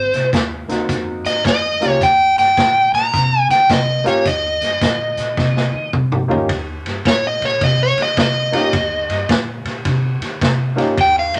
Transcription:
0.00 0.30 C5 medium
0.12 0.30 C2 medium
0.12 snare soft
0.12 closed hi-hat medium
0.33 0.65 D#2 medium
0.33 kick medium
0.33 snare medium
0.33 closed hi-hat medium
0.68 0.86 D#2 medium
0.68 1.41 A#3 soft
0.68 1.41 C4 soft
0.68 1.41 D#4 soft
0.68 1.42 F#4 medium
0.68 snare soft
0.68 closed hi-hat medium
0.89 1.21 F2 medium
0.89 kick medium
0.89 snare soft
0.89 closed hi-hat medium
1.24 1.42 G#2 medium
1.24 1.44 D#5 medium
1.24 snare soft
1.24 closed hi-hat medium
1.45 1.77 F2 medium
1.45 1.91 D#5 medium
1.45 kick medium
1.45 snare loud
1.45 closed hi-hat medium
1.81 1.99 C#2 medium
1.81 1.99 A#3 medium
1.81 1.99 C#4 medium
1.81 1.99 F4 medium
1.81 2.00 G4 medium
1.81 snare soft
1.81 closed hi-hat medium
1.91 2.04 C#5 medium
2.01 2.33 D#2 medium
2.01 2.38 G5 medium
2.01 kick medium
2.01 snare soft
2.01 closed hi-hat medium
2.37 2.55 G2 medium
2.37 2.94 G5 medium
2.37 snare soft
2.37 closed hi-hat medium
2.57 2.89 A#2 medium
2.57 kick medium
2.57 snare medium
2.57 closed hi-hat medium
2.92 3.10 A#2 medium
2.92 3.40 A#5 medium
2.92 snare soft
2.92 closed hi-hat soft
3.13 3.45 C3 medium
3.13 kick medium
3.13 snare soft
3.13 closed hi-hat medium
3.40 3.51 G#5 medium
3.49 3.67 D#3 medium
3.49 3.71 G5 medium
3.49 snare soft
3.49 closed hi-hat medium
3.69 4.01 C3 medium
3.69 4.04 D#5 medium
3.69 kick medium
3.69 snare loud
3.69 closed hi-hat medium
4.04 4.23 G#2 medium
4.04 4.22 A#3 medium
4.04 4.23 C#4 medium
4.04 4.23 F4 medium
4.04 4.23 G4 medium
4.04 4.27 C#5 medium
4.04 snare soft
4.04 closed hi-hat medium
4.25 4.58 D#2 medium
4.25 5.90 D#5 medium
4.25 kick medium
4.25 snare soft
4.25 closed hi-hat medium
4.61 4.79 G2 medium
4.61 snare soft
4.61 closed hi-hat medium
4.81 5.14 A#2 medium
4.81 kick medium
4.81 snare loud
4.81 closed hi-hat medium
5.17 5.35 A#2 medium
5.17 snare soft
5.17 closed hi-hat medium
5.37 5.70 C3 medium
5.37 kick medium
5.37 snare medium
5.57 snare medium
5.73 5.91 D#3 medium
5.93 6.26 C3 medium
5.93 kick medium
5.93 mid tom medium
6.12 mid tom medium
6.28 6.47 G#2 medium
6.28 6.47 D#3 medium
6.28 6.47 A#3 medium
6.28 6.47 C#4 medium
6.28 6.47 F4 medium
6.28 6.48 G4 medium
6.28 floor tom medium
6.49 6.81 D#2 medium
6.49 kick medium
6.49 snare soft
6.49 ride medium
6.85 7.03 G2 medium
6.85 snare soft
6.85 ride medium
7.05 7.38 A#2 medium
7.05 7.25 C#5 medium
7.05 kick medium
7.05 snare loud
7.05 ride medium
7.27 7.44 D#5 medium
7.41 7.59 A#2 medium
7.41 snare soft
7.41 ride medium
7.45 7.62 C#5 medium
7.61 7.93 C3 medium
7.61 7.81 D#5 medium
7.61 kick medium
7.61 snare soft
7.61 ride medium
7.83 8.00 C#5 medium
7.96 8.15 D#3 medium
7.96 snare soft
7.96 ride medium
8.02 8.19 D#5 medium
8.17 8.49 C3 medium
8.17 9.28 D#5 medium
8.17 kick medium
8.17 snare loud
8.17 ride medium
8.52 8.70 G#2 medium
8.52 8.71 A#3 medium
8.52 8.71 C#4 medium
8.52 8.71 D#4 medium
8.52 8.71 F4 medium
8.52 8.72 G4 medium
8.52 snare soft
8.52 ride medium
8.73 9.05 D#2 medium
8.73 kick medium
8.73 snare soft
8.73 ride medium
9.08 9.27 G2 medium
9.08 snare soft
9.08 ride medium
9.29 9.61 A#2 medium
9.29 kick medium
9.29 snare loud
9.29 ride medium
9.64 9.82 A#2 medium
9.64 snare soft
9.64 ride medium
9.85 10.17 C3 medium
9.85 kick medium
9.85 snare soft
9.85 ride medium
10.20 10.38 D#3 medium
10.20 snare soft
10.20 ride medium
10.41 10.73 C3 medium
10.41 kick medium
10.41 snare loud
10.41 ride medium
10.76 10.95 G#2 loud
10.76 10.94 A#3 medium
10.76 10.95 C#4 medium
10.76 10.95 D#4 medium
10.76 10.95 F4 medium
10.76 10.95 G4 medium
10.76 snare soft
10.76 ride medium
10.97 11.30 D#2 medium
10.97 11.17 G5 medium
10.97 kick medium
10.97 snare soft
10.97 ride medium
11.19 11.36 F5 medium
11.33 11.40 G2 medium
11.33 snare soft
11.33 ride medium

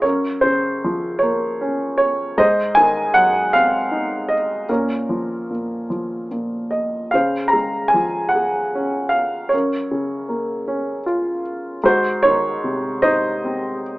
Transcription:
0.02 2.35 F#2 soft
0.02 1.17 A#4 soft
0.02 0.44 C#5 medium
0.41 1.96 C#3 soft
0.41 1.17 C5 medium
0.84 2.35 F3 soft
1.19 2.35 A#3 soft
1.19 1.96 C#5 medium
1.61 2.36 C#4 soft
1.98 2.39 C#5 medium
2.38 4.64 G#2 medium
2.38 3.50 C5 medium
2.38 2.78 D#5 medium
2.75 4.25 D#3 soft
2.75 3.15 G#5 medium
3.14 4.65 F#3 soft
3.14 3.54 F#5 medium
3.53 4.66 C4 soft
3.53 4.32 F5 medium
3.92 4.67 D#4 soft
4.29 4.65 D#5 medium
4.69 5.49 A#2 medium
4.69 6.28 C#4 soft
4.69 6.27 A#4 medium
5.09 5.88 F3 soft
5.50 6.30 A#2 soft
5.90 7.09 F3 soft
6.31 7.11 A#2 soft
6.71 7.13 D#5 medium
7.11 9.50 C#3 soft
7.11 8.32 C5 soft
7.11 7.54 F5 medium
7.48 7.93 A#5 medium
7.53 9.10 G#3 soft
7.88 8.28 G#5 medium
7.94 9.49 F3 soft
8.29 9.14 F#5 medium
8.35 9.50 G#4 soft
8.75 9.51 C#4 soft
9.09 9.48 F5 medium
9.49 10.99 C#5 medium
9.53 11.79 F#2 soft
9.53 11.02 A#4 soft
9.91 11.40 C#3 soft
10.29 11.79 A#3 soft
10.68 11.80 C#4 soft
11.06 11.81 F4 soft
11.84 13.98 G#2 medium
11.84 13.00 F#4 medium
11.84 12.25 C5 medium
12.23 13.81 D#3 soft
12.23 13.05 C#5 medium
12.64 13.98 C3 soft
13.02 13.98 D#4 medium
13.02 13.98 C5 medium
13.02 13.98 D#5 medium
13.44 13.98 C4 medium

